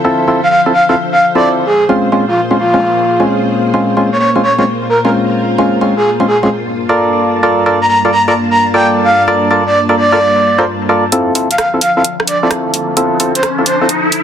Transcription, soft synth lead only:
0.43 0.48 F5 medium
0.51 0.61 F5 medium
0.74 0.84 F5 medium
0.89 0.94 F5 medium
1.12 1.25 F5 medium
1.35 1.48 D5 medium
1.66 1.84 G#4 medium
2.28 2.41 F4 medium
2.58 3.25 F4 medium
4.12 4.17 C#5 medium
4.20 4.30 C#5 medium
4.43 4.53 C#5 medium
4.59 4.63 C#5 medium
4.89 4.99 A#4 medium
5.05 5.10 A#4 medium
5.97 6.10 G#4 medium
6.27 6.37 G#4 medium
6.43 6.48 G#4 medium
7.81 7.86 A#5 medium
7.89 7.99 A#5 medium
8.12 8.22 A#5 medium
8.28 8.33 A#5 medium
8.51 8.64 A#5 medium
8.74 8.87 G5 medium
9.05 9.23 F5 medium
9.66 9.79 D5 medium
9.97 10.63 D5 loud
11.51 11.56 F5 medium
11.58 11.68 F5 medium
11.81 11.91 F5 medium
11.97 12.02 F5 medium
12.27 12.37 D5 medium
12.43 12.48 D5 medium
13.35 13.48 C5 medium
13.66 13.76 C5 medium
13.81 13.86 C5 medium

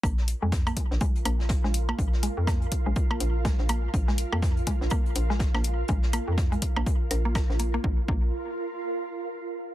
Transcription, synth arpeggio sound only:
0.04 0.12 A#3 medium
0.42 0.45 G#3 medium
0.67 0.73 A#3 loud
1.01 1.04 G#3 medium
1.25 1.34 A#3 loud
1.64 1.67 G#3 loud
1.89 1.95 A#3 loud
2.23 2.26 G#3 medium
2.47 2.56 A#3 loud
2.86 2.89 G#3 loud
3.11 3.16 A#3 medium
3.45 3.48 G#3 loud
3.69 3.78 A#3 loud
4.08 4.11 G#3 loud
4.33 4.38 A#3 loud
4.67 4.70 G#3 loud
4.91 5.00 A#3 loud
5.30 5.32 G#3 loud
5.54 5.60 A#3 loud
5.89 5.92 G#3 loud
6.13 6.22 A#3 medium
6.52 6.54 G#3 loud
6.76 6.82 A#3 loud
7.11 7.14 A#4 medium
7.25 7.29 A#3 medium
7.35 7.44 A#4 medium
7.60 7.63 A#3 medium
7.74 7.76 A#3 loud
7.84 7.99 A#3 medium
8.08 8.31 A#3 medium

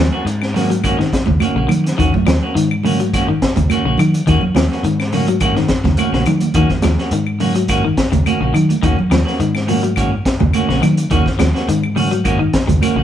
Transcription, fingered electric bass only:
0.25 1.03 G#2 medium
1.28 1.38 D#2 loud
1.55 1.65 A#1 medium
1.68 1.91 D#3 medium
1.99 2.10 D#2 loud
2.14 muted fingered electric bass stroke soft
2.27 2.38 D#2 medium
2.55 3.33 G#2 medium
3.57 3.67 D#2 medium
3.85 3.95 A#1 medium
3.98 4.20 D#3 medium
4.27 4.38 D#2 loud
4.42 muted fingered electric bass stroke soft
4.55 4.67 D#2 medium
4.83 5.61 G#2 medium
5.85 5.95 D#2 loud
6.12 6.23 A#1 medium
6.26 6.48 D#3 medium
6.54 6.66 D#2 loud
6.83 6.95 D#2 medium
7.11 7.89 G#2 medium
8.12 8.23 D#2 medium
8.40 8.51 A#1 medium
8.53 8.76 D#3 medium
8.83 8.95 D#2 medium
9.11 9.22 D#2 medium
9.40 10.17 G#2 medium
10.40 10.50 D#2 loud
10.69 10.79 A#1 medium
10.82 11.04 D#3 medium
11.10 11.22 D#2 loud
11.26 muted fingered electric bass stroke soft
11.39 11.51 D#2 medium
11.68 12.46 G#2 medium
12.69 12.79 D#2 medium
12.96 13.03 A#1 medium

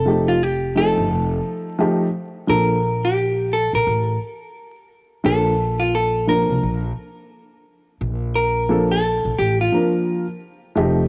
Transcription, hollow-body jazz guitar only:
0.00 0.30 A4 loud
0.28 0.43 F4 medium
0.43 0.78 G4 medium
0.77 2.11 A4 medium
2.50 3.06 A#4 loud
3.05 3.54 G4 medium
3.53 3.74 A4 medium
3.75 4.87 A#4 medium
5.26 5.82 A4 medium
5.80 5.94 F4 medium
5.95 6.29 A4 medium
6.29 7.28 A#4 medium
8.35 8.91 A#4 loud
8.91 9.39 A4 medium
9.38 9.60 G4 medium
9.61 10.26 F4 medium

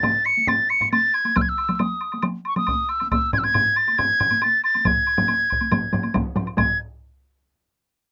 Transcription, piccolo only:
0.00 0.27 A6 loud
0.25 0.49 C#7 loud
0.48 0.71 A6 loud
0.70 0.91 C#7 loud
0.92 1.16 A6 loud
1.14 1.38 G#6 medium
1.37 1.43 E6 medium
1.41 1.50 G#6 medium
1.49 1.75 E6 medium
1.75 1.82 E6 medium
1.81 2.24 D#6 medium
2.47 2.56 C#6 medium
2.57 2.91 D#6 medium
2.89 3.10 E6 medium
3.11 3.31 E6 medium
3.33 3.40 G#6 loud
3.38 3.45 E6 medium
3.44 3.78 G#6 loud
3.77 3.99 A6 loud
3.98 4.45 G#6 loud
4.43 4.64 A6 loud
4.64 4.88 A6 loud
4.87 6.16 G#6 loud
6.58 6.78 G#6 medium

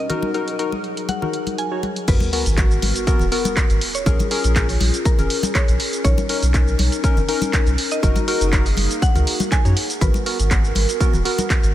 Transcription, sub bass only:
2.08 2.18 G#1 loud
2.46 2.78 G#1 medium
2.82 2.92 G#1 loud
3.20 3.29 D#1 medium
3.70 3.79 G#1 loud
4.06 4.16 A#1 loud
4.44 4.76 A#1 medium
4.81 4.91 A#1 loud
5.19 5.28 F1 medium
5.68 5.77 A#1 loud
6.05 6.15 B1 loud
6.43 6.75 B1 medium
6.79 6.89 B1 loud
7.17 7.26 F#1 loud
7.67 7.75 B1 loud
8.03 8.13 F#1 loud
8.41 8.73 F#1 medium
8.77 8.88 F#1 loud
9.15 9.24 C#2 medium
9.65 9.74 F#2 medium
10.01 10.11 G#1 loud
10.40 10.72 G#1 medium
10.76 10.86 G#1 loud
11.14 11.23 D#1 medium
11.63 11.72 G#1 loud

